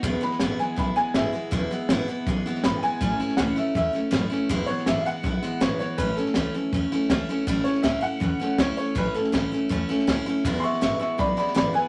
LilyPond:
<<
  \new Staff \with { instrumentName = "Upright piano" } { \time 4/4 \key e \major \tempo 4 = 161 r8 b''4 gis''8 b''8 gis''8 <gis' e''>4~ | <gis' e''>2 r4 b''8 <g'' gis''>8~ | <g'' gis''>4 fis''8 e''8 e''8 r4. | r8 cis''8 e''8 <f'' fis''>4. cis''8 cis''8 |
b'8 a'2. r8 | r8 cis''8 e''8 <f'' fis''>4. cis''8 cis''8 | b'8 <cis' a'>2. r8 | r8 <e'' c''' cis'''>8 <e'' cis'''>8 <e'' cis'''>8 <d'' b''>8 <d'' b''>8 <d'' b''>8 <b' gis''>8 | }
  \new Staff \with { instrumentName = "Steel-string acoustic guitar" } { \time 4/4 \key e \major <e, b, e gis b e'>8 <e gis b e'>8 <e, b, e gis b e'>8 <e gis b e'>8 <e gis b e'>8 <e gis b e'>8 <e, b, e gis b e'>8 <e gis b e'>8 | <e, b, e gis b e'>8 <e gis b e'>8 <e, b, e gis b e'>8 <e gis b e'>8 <e gis b e'>8 <e gis b e'>8 <e, b, e gis b e'>8 <e gis b e'>8 | <a, e a cis' e'>8 <a cis' e'>8 <a, e a cis' e'>8 <a cis' e'>8 <e a cis' e'>8 <a cis' e'>8 <a, e a cis' e'>8 <a cis' e'>8 | <e, b, e gis b e'>8 <e gis b e'>8 <e, b, e gis b e'>8 <e gis b e'>8 <e gis b e'>8 <e gis b e'>8 <e, b, e gis b e'>8 <e gis b e'>8 |
<a, e a cis' e'>8 <a cis' e'>8 <a, e a cis' e'>8 <a cis' e'>8 <e a cis' e'>8 <a cis' e'>8 <a, e a cis' e'>8 <a cis' e'>8 | <a, e a cis' e'>8 <a cis' e'>8 <a, e a cis' e'>8 <a cis' e'>8 <e a cis' e'>8 <a cis' e'>8 <a, e a cis' e'>8 <a cis' e'>8 | <a, e a cis' e'>8 <a cis' e'>8 <a, e a cis' e'>8 <a cis' e'>8 <e a cis' e'>8 <a cis' e'>8 <a, e a cis' e'>8 <a cis' e'>8 | <e, b, e gis b e'>8 <e gis b e'>8 <e, b, e gis b e'>8 <e gis b e'>8 <e gis b e'>8 <e gis b e'>8 <e, b, e gis b e'>8 <e gis b e'>8 | }
  \new Staff \with { instrumentName = "Upright bass" } { \clef bass \time 4/4 \key e \major e,,8 r8 gis,,8 r8 b,,8 r8 gis,,8 r8 | e,,8 r8 gis,,8 r8 b,,8 r8 gis,,8 r8 | a,,8 r8 cis,8 r8 e,8 r8 fis,,8 r8 | e,,8 r8 gis,,8 r8 b,,8 r8 gis,,8 r8 |
a,,8 r8 cis,8 r8 e,8 r8 cis,8 r8 | a,,8 r8 cis,8 r8 e,8 r8 cis,8 r8 | a,,8 r8 cis,8 r8 e,8 r8 cis,8 r8 | e,,8 r8 gis,,8 r8 b,,8 r8 gis,,8 r8 | }
  \new DrumStaff \with { instrumentName = "Drums" } \drummode { \time 4/4 <bd sn>8 sn16 sn16 <hhp sn>8 sn8 <bd sn>8 sn8 <hhp sn>8 sn8 | <bd sn>8 sn8 <hhp sn>8 sn8 <bd sn>8 sn16 sn16 <hhp sn>8 sn8 | <bd sn>8 sn16 sn16 <hhp sn>8 sn8 <bd sn>8 sn8 <hhp sn>8 sn8 | <bd sn>8 sn16 sn16 <hhp sn>8 sn8 <bd sn>8 sn8 <hhp sn>8 sn8 |
<bd sn>8 sn16 sn16 <hhp sn>8 sn8 <bd sn>8 sn8 <hhp sn>8 sn8 | <bd sn>8 sn16 sn16 <hhp sn>8 sn8 <bd sn>8 sn8 <hhp sn>8 sn8 | <bd sn>8 sn16 sn16 <hhp sn>8 sn8 <bd sn>8 sn16 sn16 <hhp sn>8 sn8 | <bd sn>8 sn16 sn16 <hhp sn>8 sn8 <bd sn>8 sn16 sn16 <hhp sn>8 sn8 | }
>>